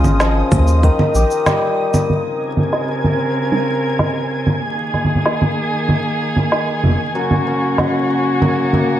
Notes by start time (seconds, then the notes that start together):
Already playing: C#3 F4 A#4 D#5 D#6
0.04 G#1, low conga, shaker
0.20 F3, snare, shaker
0.52 D#2, kick, low conga, shaker
0.68 shaker
0.83 D#3, kick, shaker
0.99 low conga
1.15 A#1 G4, shaker
1.31 shaker
1.46 G3, snare, low conga, shaker
1.94 low conga, shaker
2.10 C#3 C4 A#4 G#5 G#6, low conga
2.57 low conga
2.73 snare
3.04 low conga
3.52 low conga
3.99 snare, low conga
4.47 low conga
4.63 D#3 A#3 G#4
4.94 snare, low conga
5.05 low conga
5.15 low conga
5.26 snare
5.42 low conga
5.89 low conga
6.36 low conga
6.52 snare
6.84 low conga
6.86 low conga
6.88 low conga
6.90 low conga
6.93 low conga
6.95 low conga
6.97 low conga
7.15 F#2 C#3 A#3 F#4
7.31 low conga
7.47 C#4
7.78 F#3, snare, low conga
8.10 F#4
8.42 F#2, low conga
8.73 A#3, low conga